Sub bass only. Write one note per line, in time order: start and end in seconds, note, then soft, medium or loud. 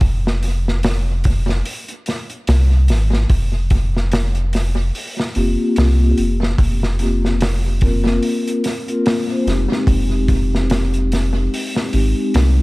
0.01 1.62 F1 medium
2.48 2.90 C2 medium
2.89 3.26 G#1 loud
3.30 4.91 F1 loud
5.36 5.56 F1 medium
5.77 6.14 C2 medium
6.18 6.55 F1 medium
6.59 8.20 F1 medium
9.46 9.67 F1 medium
9.87 11.48 F1 medium
11.93 12.14 G#1 medium
12.34 12.62 C2 medium